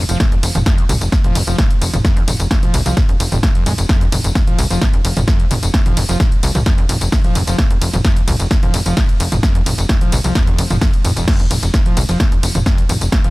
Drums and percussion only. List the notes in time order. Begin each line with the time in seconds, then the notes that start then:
0.09 closed hi-hat, tambourine
0.20 kick, snare, closed hi-hat, mid tom, ride
0.32 closed hi-hat
0.43 open hi-hat, ride, tambourine
0.55 closed hi-hat, mid tom, tambourine
0.66 kick, snare, closed hi-hat, ride
0.78 closed hi-hat
0.89 mid tom, open hi-hat, ride, tambourine
1.01 closed hi-hat, tambourine
1.12 kick, snare, closed hi-hat, ride
1.24 closed hi-hat, mid tom
1.35 open hi-hat, ride, tambourine
1.47 closed hi-hat, tambourine
1.58 kick, snare, closed hi-hat, mid tom, ride
1.70 closed hi-hat
1.82 open hi-hat, ride, tambourine
1.94 closed hi-hat, mid tom, tambourine
2.05 kick, snare, closed hi-hat, ride, tambourine
2.17 closed hi-hat
2.28 mid tom, open hi-hat, ride, tambourine
2.40 closed hi-hat, tambourine
2.51 kick, snare, closed hi-hat, ride
2.63 closed hi-hat, mid tom
2.74 open hi-hat, ride, tambourine
2.86 closed hi-hat, tambourine
2.97 kick, snare, closed hi-hat, mid tom, ride
3.09 closed hi-hat
3.20 open hi-hat, ride, tambourine
3.32 closed hi-hat, mid tom, tambourine
3.43 kick, snare, closed hi-hat, ride
3.55 closed hi-hat
3.66 mid tom, open hi-hat, ride, tambourine
3.78 closed hi-hat, tambourine
3.89 kick, snare, closed hi-hat, ride
4.01 closed hi-hat
4.12 mid tom, open hi-hat, ride, tambourine
4.24 closed hi-hat, tambourine
4.35 kick, snare, closed hi-hat, ride
4.47 closed hi-hat, mid tom
4.59 open hi-hat, ride, tambourine
4.71 closed hi-hat, tambourine
4.81 kick, snare, closed hi-hat, mid tom, ride
4.94 closed hi-hat
5.05 open hi-hat, ride, tambourine
5.17 closed hi-hat, mid tom, tambourine
5.28 kick, snare, closed hi-hat, ride, tambourine
5.40 closed hi-hat
5.51 mid tom, open hi-hat, ride, tambourine
5.63 closed hi-hat, tambourine
5.74 kick, snare, closed hi-hat, ride
5.86 closed hi-hat, mid tom
5.97 open hi-hat, ride, tambourine
6.09 closed hi-hat, tambourine
6.20 kick, snare, closed hi-hat, mid tom, ride
6.32 closed hi-hat
6.43 open hi-hat, ride, tambourine
6.55 closed hi-hat, mid tom, tambourine
6.66 kick, snare, closed hi-hat, ride
6.78 closed hi-hat
6.89 mid tom, open hi-hat, ride, tambourine
7.01 closed hi-hat, tambourine
7.12 kick, snare, closed hi-hat, ride
7.24 closed hi-hat, mid tom
7.35 open hi-hat, ride, tambourine
7.47 closed hi-hat, tambourine
7.58 kick, snare, closed hi-hat, mid tom, ride
7.71 closed hi-hat
7.82 open hi-hat, ride, tambourine
7.94 closed hi-hat, mid tom, tambourine
8.05 kick, snare, closed hi-hat, ride, tambourine
8.17 closed hi-hat
8.28 mid tom, open hi-hat, ride, tambourine
8.40 closed hi-hat, tambourine
8.51 kick, snare, closed hi-hat, ride, tambourine
8.63 closed hi-hat, mid tom
8.74 open hi-hat, ride, tambourine
8.86 closed hi-hat, tambourine
8.97 kick, snare, closed hi-hat, mid tom, ride, tambourine
9.09 closed hi-hat
9.20 open hi-hat, ride, tambourine
9.32 closed hi-hat, mid tom, tambourine
9.43 kick, snare, closed hi-hat, ride, tambourine
9.55 closed hi-hat
9.66 mid tom, open hi-hat, ride, tambourine
9.78 closed hi-hat, tambourine
9.89 kick, snare, closed hi-hat
10.01 closed hi-hat, mid tom
10.12 open hi-hat, ride, tambourine
10.24 closed hi-hat, tambourine
10.35 kick, snare, closed hi-hat, mid tom, ride, tambourine
10.47 closed hi-hat
10.59 open hi-hat, ride, tambourine
10.70 closed hi-hat, mid tom, tambourine
10.81 kick, snare, closed hi-hat, ride
10.94 closed hi-hat
11.05 mid tom, open hi-hat, ride, tambourine
11.17 closed hi-hat, tambourine
11.28 kick, snare, closed hi-hat, crash, ride
11.40 closed hi-hat
11.51 mid tom, open hi-hat, ride, tambourine
11.63 closed hi-hat, tambourine
11.74 kick, snare, closed hi-hat, ride
11.86 closed hi-hat, mid tom
11.97 open hi-hat, ride, tambourine
12.09 closed hi-hat, tambourine
12.20 kick, snare, closed hi-hat, mid tom, ride, tambourine
12.32 closed hi-hat
12.43 open hi-hat, ride, tambourine
12.55 closed hi-hat, mid tom, tambourine
12.66 kick, snare, closed hi-hat, ride, tambourine
12.78 closed hi-hat
12.89 mid tom, open hi-hat, ride, tambourine
13.01 closed hi-hat, tambourine
13.12 kick, snare, closed hi-hat, ride
13.24 closed hi-hat, mid tom